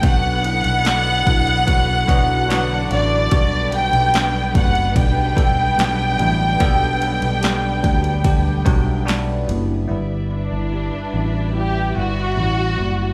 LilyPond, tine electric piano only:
\new Staff \with { instrumentName = "Tine electric piano" } { \time 4/4 \key g \major \tempo 4 = 73 << { b,4. r2 r8 | b,4. r2 r8 | b,4. r4 fis''16 e''16 d''4 | g,4. r2 r8 | } \\ { <fis b d' fis'>8 <fis b d' e'>8 <fis b d' a'>8 <fis b d' e'>8 <fis b d' fis'>8 <fis b d' fis'>8 <fis b d' fis'>8 <fis b d' fis'>8 | <g b d' fis'>8 <g b d' a'>8 <fis g b d'>8 <g b d' fis'>8 <g b d' g'>8 <g b d' a'>8 <fis g b d'>8 <fis g b d'>8 | <g b d' a'>8 <fis g b d'>8 <g b d' g'>8 <fis g b d'>8 <g b d' g'>8 <fis g b d'>8 <g b d' fis'>8 <g b d' e'>8 | <g b e'>8 <g b e'>8 <g b g'>8 <g b fis'>8 <g b e'>8 <g b fis'>8 <g b e'>8 <g b e'>8 | } >> }